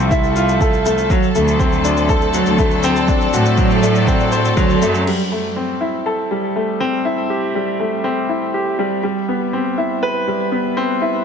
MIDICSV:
0, 0, Header, 1, 5, 480
1, 0, Start_track
1, 0, Key_signature, 0, "minor"
1, 0, Tempo, 495868
1, 1069, Time_signature, 4, 2, 24, 8
1, 10885, End_track
2, 0, Start_track
2, 0, Title_t, "String section"
2, 0, Program_c, 0, 48
2, 0, Note_on_c, 0, 53, 65
2, 0, Note_on_c, 0, 69, 76
2, 0, Note_on_c, 0, 76, 73
2, 1067, Note_off_c, 0, 53, 0
2, 1068, Note_on_c, 0, 54, 70
2, 2084, Note_off_c, 0, 76, 0
2, 2254, Note_on_c, 0, 74, 67
2, 4899, Note_on_c, 0, 55, 59
2, 4908, Note_off_c, 0, 54, 0
2, 5939, Note_off_c, 0, 74, 0
2, 6538, Note_on_c, 0, 76, 59
2, 9571, Note_on_c, 0, 71, 50
2, 9968, Note_off_c, 0, 69, 0
2, 10885, Note_off_c, 0, 55, 0
2, 10885, Note_off_c, 0, 71, 0
2, 10885, Note_off_c, 0, 76, 0
2, 10885, End_track
3, 0, Start_track
3, 0, Title_t, "Grand piano"
3, 0, Program_c, 1, 0
3, 0, Control_c, 1, 64, 127
3, 0, Note_on_c, 1, 57, 73
3, 0, Note_on_c, 1, 60, 70
3, 0, Note_on_c, 1, 64, 95
3, 0, Note_on_c, 1, 65, 73
3, 0, Note_on_c, 1, 69, 62
3, 0, Note_on_c, 1, 72, 85
3, 109, Note_off_c, 1, 64, 0
3, 109, Note_on_c, 1, 64, 88
3, 337, Note_off_c, 1, 64, 0
3, 347, Note_off_c, 1, 65, 0
3, 347, Note_on_c, 1, 65, 70
3, 576, Note_off_c, 1, 65, 0
3, 589, Note_off_c, 1, 69, 0
3, 589, Note_on_c, 1, 69, 72
3, 726, Note_off_c, 1, 69, 0
3, 829, Note_off_c, 1, 57, 0
3, 829, Note_on_c, 1, 57, 76
3, 1057, Note_off_c, 1, 57, 0
3, 1074, Note_on_c, 1, 54, 81
3, 1083, Note_off_c, 1, 60, 0
3, 1083, Control_c, 1, 64, 0
3, 1088, Note_off_c, 1, 72, 0
3, 1208, Note_off_c, 1, 54, 0
3, 1264, Control_c, 1, 64, 127
3, 1310, Note_on_c, 1, 57, 68
3, 1537, Note_off_c, 1, 57, 0
3, 1546, Note_on_c, 1, 60, 76
3, 1775, Note_off_c, 1, 60, 0
3, 1788, Note_on_c, 1, 62, 72
3, 2016, Note_off_c, 1, 62, 0
3, 2027, Note_on_c, 1, 69, 93
3, 2256, Note_off_c, 1, 69, 0
3, 2267, Note_on_c, 1, 54, 67
3, 2496, Note_off_c, 1, 54, 0
3, 2508, Note_on_c, 1, 57, 77
3, 2645, Note_off_c, 1, 57, 0
3, 2749, Note_on_c, 1, 60, 106
3, 2886, Note_off_c, 1, 60, 0
3, 2989, Note_on_c, 1, 62, 80
3, 3126, Note_off_c, 1, 62, 0
3, 3230, Note_on_c, 1, 66, 71
3, 3457, Note_off_c, 1, 66, 0
3, 3467, Note_on_c, 1, 54, 79
3, 3696, Note_off_c, 1, 54, 0
3, 3706, Note_on_c, 1, 57, 71
3, 3935, Note_off_c, 1, 57, 0
3, 3946, Note_on_c, 1, 60, 85
3, 4175, Note_off_c, 1, 60, 0
3, 4183, Note_on_c, 1, 72, 75
3, 4414, Note_off_c, 1, 72, 0
3, 4423, Note_on_c, 1, 54, 96
3, 4654, Note_off_c, 1, 54, 0
3, 4666, Note_on_c, 1, 57, 80
3, 4895, Note_off_c, 1, 57, 0
3, 4910, Note_on_c, 1, 55, 59
3, 4919, Control_c, 1, 64, 0
3, 5046, Note_off_c, 1, 55, 0
3, 5107, Control_c, 1, 64, 127
3, 5147, Note_on_c, 1, 57, 55
3, 5376, Note_off_c, 1, 57, 0
3, 5386, Note_on_c, 1, 60, 57
3, 5615, Note_off_c, 1, 60, 0
3, 5621, Note_on_c, 1, 64, 58
3, 5853, Note_off_c, 1, 64, 0
3, 5866, Note_on_c, 1, 69, 71
3, 6095, Note_off_c, 1, 69, 0
3, 6108, Note_on_c, 1, 55, 59
3, 6336, Note_off_c, 1, 55, 0
3, 6348, Note_on_c, 1, 57, 58
3, 6485, Note_off_c, 1, 57, 0
3, 6587, Note_on_c, 1, 60, 85
3, 6724, Note_off_c, 1, 60, 0
3, 6825, Note_on_c, 1, 64, 66
3, 6964, Note_off_c, 1, 64, 0
3, 7067, Note_on_c, 1, 67, 57
3, 7296, Note_off_c, 1, 67, 0
3, 7308, Note_on_c, 1, 55, 56
3, 7536, Note_off_c, 1, 55, 0
3, 7547, Note_on_c, 1, 57, 60
3, 7775, Note_off_c, 1, 57, 0
3, 7784, Note_on_c, 1, 60, 75
3, 8014, Note_off_c, 1, 60, 0
3, 8025, Note_on_c, 1, 64, 59
3, 8255, Note_off_c, 1, 64, 0
3, 8268, Note_on_c, 1, 67, 58
3, 8405, Note_off_c, 1, 67, 0
3, 8507, Note_on_c, 1, 55, 66
3, 8730, Note_off_c, 1, 55, 0
3, 8745, Note_on_c, 1, 55, 68
3, 8762, Control_c, 1, 64, 0
3, 8883, Note_off_c, 1, 55, 0
3, 8899, Control_c, 1, 64, 127
3, 8988, Note_on_c, 1, 59, 56
3, 9216, Note_off_c, 1, 59, 0
3, 9227, Note_on_c, 1, 60, 63
3, 9456, Note_off_c, 1, 60, 0
3, 9465, Note_on_c, 1, 64, 60
3, 9695, Note_off_c, 1, 64, 0
3, 9706, Note_on_c, 1, 71, 80
3, 9935, Note_off_c, 1, 71, 0
3, 9947, Note_on_c, 1, 55, 57
3, 10176, Note_off_c, 1, 55, 0
3, 10181, Note_on_c, 1, 59, 61
3, 10322, Note_off_c, 1, 59, 0
3, 10425, Note_on_c, 1, 60, 87
3, 10563, Note_off_c, 1, 60, 0
3, 10664, Note_on_c, 1, 64, 64
3, 10803, Note_off_c, 1, 64, 0
3, 10885, End_track
4, 0, Start_track
4, 0, Title_t, "Cello section"
4, 0, Program_c, 2, 48
4, 0, Note_on_c, 2, 36, 91
4, 1035, Note_off_c, 2, 36, 0
4, 1308, Note_on_c, 2, 38, 91
4, 2356, Note_off_c, 2, 38, 0
4, 2385, Note_on_c, 2, 38, 82
4, 2955, Note_off_c, 2, 38, 0
4, 3223, Note_on_c, 2, 45, 92
4, 4394, Note_off_c, 2, 45, 0
4, 4425, Note_on_c, 2, 38, 81
4, 4627, Note_off_c, 2, 38, 0
4, 4664, Note_on_c, 2, 42, 99
4, 4866, Note_off_c, 2, 42, 0
4, 10885, End_track
5, 0, Start_track
5, 0, Title_t, "Drums"
5, 108, Note_on_c, 9, 36, 91
5, 111, Note_on_c, 9, 82, 38
5, 205, Note_off_c, 9, 36, 0
5, 208, Note_off_c, 9, 82, 0
5, 230, Note_on_c, 9, 82, 19
5, 327, Note_off_c, 9, 82, 0
5, 350, Note_on_c, 9, 82, 59
5, 447, Note_off_c, 9, 82, 0
5, 472, Note_on_c, 9, 82, 28
5, 568, Note_off_c, 9, 82, 0
5, 588, Note_on_c, 9, 36, 97
5, 590, Note_on_c, 9, 82, 36
5, 685, Note_off_c, 9, 36, 0
5, 687, Note_off_c, 9, 82, 0
5, 710, Note_on_c, 9, 82, 18
5, 807, Note_off_c, 9, 82, 0
5, 829, Note_on_c, 9, 82, 64
5, 926, Note_off_c, 9, 82, 0
5, 950, Note_on_c, 9, 82, 29
5, 1047, Note_off_c, 9, 82, 0
5, 1067, Note_on_c, 9, 36, 98
5, 1069, Note_on_c, 9, 82, 36
5, 1163, Note_off_c, 9, 36, 0
5, 1165, Note_off_c, 9, 82, 0
5, 1191, Note_on_c, 9, 82, 18
5, 1287, Note_off_c, 9, 82, 0
5, 1311, Note_on_c, 9, 82, 68
5, 1407, Note_off_c, 9, 82, 0
5, 1430, Note_on_c, 9, 82, 27
5, 1527, Note_off_c, 9, 82, 0
5, 1546, Note_on_c, 9, 36, 89
5, 1549, Note_on_c, 9, 82, 37
5, 1643, Note_off_c, 9, 36, 0
5, 1646, Note_off_c, 9, 82, 0
5, 1669, Note_on_c, 9, 82, 18
5, 1766, Note_off_c, 9, 82, 0
5, 1788, Note_on_c, 9, 82, 68
5, 1885, Note_off_c, 9, 82, 0
5, 1908, Note_on_c, 9, 82, 26
5, 2005, Note_off_c, 9, 82, 0
5, 2025, Note_on_c, 9, 36, 86
5, 2025, Note_on_c, 9, 82, 36
5, 2122, Note_off_c, 9, 36, 0
5, 2122, Note_off_c, 9, 82, 0
5, 2144, Note_on_c, 9, 82, 19
5, 2241, Note_off_c, 9, 82, 0
5, 2261, Note_on_c, 9, 82, 63
5, 2358, Note_off_c, 9, 82, 0
5, 2384, Note_on_c, 9, 82, 27
5, 2481, Note_off_c, 9, 82, 0
5, 2505, Note_on_c, 9, 36, 92
5, 2505, Note_on_c, 9, 82, 36
5, 2601, Note_off_c, 9, 36, 0
5, 2601, Note_off_c, 9, 82, 0
5, 2622, Note_on_c, 9, 82, 17
5, 2719, Note_off_c, 9, 82, 0
5, 2743, Note_on_c, 9, 82, 69
5, 2839, Note_off_c, 9, 82, 0
5, 2867, Note_on_c, 9, 82, 27
5, 2964, Note_off_c, 9, 82, 0
5, 2985, Note_on_c, 9, 36, 94
5, 2987, Note_on_c, 9, 82, 37
5, 3082, Note_off_c, 9, 36, 0
5, 3084, Note_off_c, 9, 82, 0
5, 3107, Note_on_c, 9, 82, 18
5, 3204, Note_off_c, 9, 82, 0
5, 3228, Note_on_c, 9, 82, 69
5, 3324, Note_off_c, 9, 82, 0
5, 3345, Note_on_c, 9, 82, 30
5, 3441, Note_off_c, 9, 82, 0
5, 3463, Note_on_c, 9, 82, 38
5, 3466, Note_on_c, 9, 36, 98
5, 3560, Note_off_c, 9, 82, 0
5, 3563, Note_off_c, 9, 36, 0
5, 3586, Note_on_c, 9, 82, 18
5, 3683, Note_off_c, 9, 82, 0
5, 3708, Note_on_c, 9, 82, 67
5, 3805, Note_off_c, 9, 82, 0
5, 3828, Note_on_c, 9, 82, 26
5, 3924, Note_off_c, 9, 82, 0
5, 3946, Note_on_c, 9, 36, 84
5, 3947, Note_on_c, 9, 82, 37
5, 4043, Note_off_c, 9, 36, 0
5, 4043, Note_off_c, 9, 82, 0
5, 4066, Note_on_c, 9, 82, 18
5, 4163, Note_off_c, 9, 82, 0
5, 4185, Note_on_c, 9, 82, 63
5, 4282, Note_off_c, 9, 82, 0
5, 4307, Note_on_c, 9, 82, 28
5, 4404, Note_off_c, 9, 82, 0
5, 4427, Note_on_c, 9, 36, 95
5, 4427, Note_on_c, 9, 82, 40
5, 4524, Note_off_c, 9, 36, 0
5, 4524, Note_off_c, 9, 82, 0
5, 4550, Note_on_c, 9, 82, 19
5, 4646, Note_off_c, 9, 82, 0
5, 4669, Note_on_c, 9, 82, 69
5, 4765, Note_off_c, 9, 82, 0
5, 4790, Note_on_c, 9, 82, 28
5, 4887, Note_off_c, 9, 82, 0
5, 4912, Note_on_c, 9, 49, 63
5, 5009, Note_off_c, 9, 49, 0
5, 10885, End_track
0, 0, End_of_file